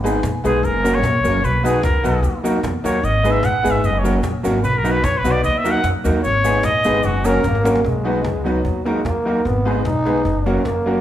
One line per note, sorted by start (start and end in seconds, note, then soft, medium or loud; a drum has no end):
0.00 0.17 G#1 loud
0.00 0.19 G#3 medium
0.00 0.16 B3 medium
0.00 0.17 D#4 medium
0.04 0.19 B3 medium
0.04 0.20 D#4 medium
0.04 0.17 G#4 medium
0.04 0.20 G#4 medium
0.04 0.17 B4 loud
0.04 cabasa medium
0.23 0.41 A#1 loud
0.23 cajon bass loud
0.23 cajon slap loud
0.23 cabasa medium
0.44 0.61 B1 medium
0.44 0.60 G#3 medium
0.44 0.57 B3 medium
0.44 0.60 B3 medium
0.44 0.57 D#4 medium
0.44 0.60 D#4 medium
0.44 0.57 G#4 medium
0.44 0.66 G#4 medium
0.44 0.60 G#4 loud
0.44 0.57 B4 loud
0.44 cabasa medium
0.63 1.03 F#1 loud
0.63 0.96 A#4 loud
0.63 cabasa medium
0.84 0.99 F#3 medium
0.84 0.97 A#3 medium
0.84 1.00 A#3 medium
0.84 0.97 C#4 medium
0.84 1.00 C#4 medium
0.84 0.97 F#4 medium
0.84 1.00 F#4 medium
0.84 0.97 A#4 loud
0.84 cajon slap medium
0.84 cabasa medium
0.94 1.46 C#5 loud
1.03 1.21 A#1 medium
1.03 cajon bass loud
1.03 cajon slap loud
1.03 cabasa medium
1.24 1.41 F#1 medium
1.24 1.39 F#3 medium
1.24 1.36 A#3 medium
1.24 1.40 A#3 medium
1.24 1.37 C#4 medium
1.24 1.40 C#4 medium
1.24 1.37 F#4 medium
1.24 1.40 F#4 loud
1.24 1.37 A#4 loud
1.24 cabasa medium
1.44 1.78 B1 loud
1.44 1.65 B4 loud
1.44 cabasa medium
1.63 1.79 F#3 medium
1.63 1.76 B3 medium
1.63 1.80 B3 medium
1.63 1.77 D#4 medium
1.63 1.80 D#4 loud
1.63 1.77 F#4 medium
1.63 1.80 F#4 loud
1.63 1.83 G#4 medium
1.63 1.77 B4 loud
1.63 cabasa medium
1.83 2.01 C#2 medium
1.83 1.88 F#4 soft
1.83 2.41 A#4 medium
1.83 1.88 B4 soft
1.83 cajon bass loud
1.83 cajon slap loud
1.83 cabasa medium
2.04 2.21 B1 loud
2.04 2.19 F#3 medium
2.04 2.17 B3 loud
2.04 2.19 B3 medium
2.04 2.17 D#4 medium
2.04 2.19 D#4 loud
2.04 2.17 F#4 medium
2.04 2.20 F#4 loud
2.04 2.17 B4 loud
2.04 cabasa medium
2.23 2.57 D#2 loud
2.23 cabasa medium
2.43 2.59 F#3 medium
2.43 2.59 A#3 medium
2.43 2.57 A#3 loud
2.43 2.59 D#4 medium
2.43 2.57 D#4 medium
2.43 2.60 F#4 medium
2.43 2.57 F#4 medium
2.43 2.57 A#4 loud
2.43 cajon slap medium
2.43 cabasa medium
2.63 2.81 E2 loud
2.63 cajon bass loud
2.63 cajon slap loud
2.63 cabasa medium
2.84 3.01 D#2 medium
2.84 2.99 F#3 medium
2.84 2.97 A#3 medium
2.84 3.00 A#3 loud
2.84 2.97 D#4 medium
2.84 3.00 D#4 loud
2.84 2.97 F#4 medium
2.84 3.00 F#4 loud
2.84 2.97 A#4 medium
2.84 3.06 C#5 medium
2.84 cabasa medium
3.03 3.38 G#1 loud
3.03 3.32 D#5 loud
3.03 cabasa medium
3.23 3.39 G#3 medium
3.23 3.37 B3 loud
3.23 3.40 B3 medium
3.23 3.37 D#4 medium
3.23 3.40 D#4 medium
3.23 3.37 G#4 medium
3.23 3.40 G#4 medium
3.23 3.37 B4 loud
3.23 cabasa medium
3.31 3.46 E5 loud
3.43 3.61 A#1 loud
3.43 3.72 F#5 loud
3.43 cajon bass loud
3.43 cajon slap loud
3.43 cabasa medium
3.63 3.81 G#1 medium
3.63 3.79 G#3 medium
3.63 3.76 B3 loud
3.63 3.80 B3 medium
3.63 3.77 D#4 medium
3.63 3.80 D#4 medium
3.63 3.77 G#4 medium
3.63 3.80 G#4 loud
3.63 3.77 B4 loud
3.63 cabasa medium
3.71 3.87 E5 loud
3.84 4.18 F#1 loud
3.84 4.00 D#5 medium
3.84 cabasa medium
3.99 4.18 C#5 medium
4.03 4.19 F#3 medium
4.03 4.17 A#3 medium
4.03 4.19 A#3 medium
4.03 4.17 C#4 medium
4.03 4.20 C#4 loud
4.03 4.17 F#4 medium
4.03 4.20 F#4 loud
4.03 4.17 A#4 loud
4.03 cabasa medium
4.23 4.42 A#1 loud
4.23 cajon bass loud
4.23 cajon slap loud
4.23 cabasa medium
4.43 4.61 G#1 medium
4.43 4.59 F#3 medium
4.43 4.57 A#3 medium
4.43 4.59 A#3 loud
4.43 4.57 C#4 medium
4.43 4.60 C#4 loud
4.43 4.57 F#4 medium
4.43 4.60 F#4 loud
4.43 4.57 A#4 medium
4.43 cabasa medium
4.64 4.98 B1 loud
4.64 4.80 B4 loud
4.64 cabasa medium
4.78 4.93 A#4 medium
4.84 4.99 F#3 medium
4.84 5.00 B3 loud
4.84 4.97 B3 loud
4.84 5.00 D#4 loud
4.84 4.97 D#4 medium
4.84 4.97 F#4 medium
4.84 5.00 F#4 loud
4.84 4.98 B4 loud
4.84 cabasa medium
4.91 5.05 B4 loud
5.04 5.22 A#1 loud
5.04 5.09 F#4 soft
5.04 5.08 B4 soft
5.04 5.19 C#5 loud
5.04 cajon bass loud
5.04 cajon slap loud
5.04 cabasa medium
5.18 5.33 B4 loud
5.24 5.41 B1 medium
5.24 5.40 F#3 medium
5.24 5.37 B3 loud
5.24 5.40 B3 medium
5.24 5.37 D#4 medium
5.24 5.40 D#4 loud
5.24 5.37 F#4 medium
5.24 5.41 F#4 medium
5.24 5.38 B4 loud
5.24 cabasa medium
5.31 5.44 D5 loud
5.44 5.78 D#2 loud
5.44 5.59 D#5 loud
5.44 cabasa medium
5.58 5.72 E5 loud
5.64 5.80 F#3 medium
5.64 5.77 A#3 loud
5.64 5.80 A#3 loud
5.64 5.77 D#4 medium
5.64 5.80 D#4 medium
5.64 5.77 F#4 medium
5.64 5.81 F#4 loud
5.64 5.78 A#4 loud
5.64 cajon slap medium
5.64 cabasa medium
5.71 5.91 F#5 loud
5.84 6.02 F#2 loud
5.84 cajon bass loud
5.84 cajon slap loud
5.84 cabasa medium
6.04 6.22 D#2 medium
6.04 6.20 F#3 medium
6.04 6.17 A#3 medium
6.04 6.20 A#3 medium
6.04 6.17 D#4 medium
6.04 6.20 D#4 loud
6.04 6.17 F#4 medium
6.04 6.21 F#4 loud
6.04 6.18 A#4 loud
6.04 cajon slap soft
6.04 cabasa medium
6.23 6.59 G#1 loud
6.23 6.66 C#5 loud
6.23 cabasa medium
6.44 6.60 G#3 medium
6.44 6.57 B3 loud
6.44 6.60 B3 medium
6.44 6.57 D#4 medium
6.44 6.60 D#4 medium
6.44 6.58 G#4 medium
6.44 6.60 G#4 medium
6.44 6.58 B4 loud
6.44 cabasa medium
6.63 6.82 A#1 loud
6.63 7.07 D#5 loud
6.63 cajon bass loud
6.63 cajon slap loud
6.63 cabasa medium
6.84 7.02 G#1 loud
6.84 7.00 G#3 medium
6.84 6.98 B3 loud
6.84 7.00 B3 medium
6.84 6.98 D#4 medium
6.84 7.00 D#4 loud
6.84 6.98 G#4 medium
6.84 7.01 G#4 loud
6.84 6.98 B4 loud
6.84 cabasa medium
7.03 7.39 F#1 loud
7.03 7.27 F#4 loud
7.03 cabasa medium
7.24 7.40 F#3 medium
7.24 7.37 A#3 loud
7.24 7.40 A#3 medium
7.24 7.40 C#4 loud
7.24 7.38 C#4 medium
7.24 7.44 C#4 loud
7.24 7.38 F#4 medium
7.24 7.40 F#4 loud
7.24 7.66 A#4 medium
7.24 7.38 A#4 loud
7.24 cajon slap medium
7.24 cabasa loud
7.44 7.79 G#1 loud
7.44 7.87 A#3 loud
7.44 cajon bass loud
7.44 cajon slap medium
7.44 cabasa medium
7.55 cajon slap medium
7.64 7.80 F#3 medium
7.64 7.80 A#3 loud
7.64 7.78 A#3 medium
7.64 7.80 C#4 loud
7.64 7.78 C#4 medium
7.64 7.80 F#4 loud
7.64 7.78 F#4 medium
7.64 7.78 A#4 loud
7.64 cajon slap loud
7.64 cabasa medium
7.75 cajon slap loud
7.85 8.19 B1 medium
7.85 8.48 G#3 medium
7.85 cajon bass loud
8.04 8.20 F#3 medium
8.04 8.18 B3 loud
8.04 8.20 B3 medium
8.04 8.18 D#4 medium
8.04 8.20 D#4 medium
8.04 8.18 F#4 medium
8.04 8.21 F#4 medium
8.04 8.18 B4 loud
8.25 8.59 C#2 loud
8.25 cajon bass loud
8.25 cajon slap loud
8.44 8.60 F#3 medium
8.44 8.88 F#3 medium
8.44 8.60 B3 medium
8.44 8.58 B3 medium
8.44 8.60 D#4 medium
8.44 8.58 D#4 medium
8.44 8.61 F#4 medium
8.44 8.58 F#4 medium
8.44 8.59 B4 loud
8.44 cajon slap medium
8.65 8.99 D#2 medium
8.65 cajon bass loud
8.85 9.01 F#3 medium
8.85 9.07 G#3 medium
8.85 8.98 A#3 medium
8.85 9.01 A#3 medium
8.85 8.98 D#4 medium
8.85 9.01 D#4 medium
8.85 8.98 F#4 medium
8.85 9.01 F#4 medium
8.85 8.99 A#4 loud
8.85 cajon slap medium
9.05 9.39 D#2 medium
9.05 9.48 A#3 loud
9.05 9.09 F#4 soft
9.05 9.09 A#4 soft
9.05 cajon bass loud
9.05 cajon slap loud
9.25 9.41 F#3 medium
9.25 9.38 A#3 medium
9.25 9.41 A#3 medium
9.25 9.38 D#4 medium
9.25 9.41 D#4 medium
9.25 9.39 F#4 medium
9.25 9.41 F#4 loud
9.25 9.39 A#4 loud
9.25 cajon slap soft
9.45 9.79 G#1 loud
9.45 9.84 B3 loud
9.45 cajon bass loud
9.65 9.81 G#3 medium
9.65 9.78 B3 medium
9.65 9.81 B3 medium
9.65 9.78 D#4 medium
9.65 9.81 D#4 medium
9.65 9.78 G#4 medium
9.65 9.81 G#4 medium
9.65 9.79 B4 loud
9.85 10.19 B1 medium
9.85 10.48 D#4 loud
9.85 cajon bass loud
9.85 cajon slap loud
10.05 10.21 G#3 medium
10.05 10.21 B3 medium
10.05 10.18 B3 loud
10.05 10.21 D#4 medium
10.05 10.19 D#4 medium
10.05 10.21 G#4 medium
10.05 10.19 G#4 medium
10.05 10.19 B4 loud
10.05 cajon slap medium
10.25 10.59 F#1 loud
10.25 cajon bass loud
10.46 10.61 F#3 medium
10.46 10.59 A#3 medium
10.46 10.61 A#3 medium
10.46 10.67 C#4 loud
10.46 10.59 C#4 medium
10.46 10.62 C#4 medium
10.46 10.59 F#4 medium
10.46 10.62 F#4 loud
10.46 10.59 A#4 loud
10.46 cajon slap medium
10.65 10.99 F#1 medium
10.65 11.01 A#3 loud
10.65 cajon bass loud
10.65 cajon slap loud
10.86 11.01 F#3 loud
10.86 10.99 A#3 medium
10.86 11.01 A#3 medium
10.86 10.99 C#4 medium
10.86 11.01 C#4 loud
10.86 10.99 F#4 medium
10.86 11.01 F#4 medium
10.86 10.99 A#4 medium
10.86 cajon slap soft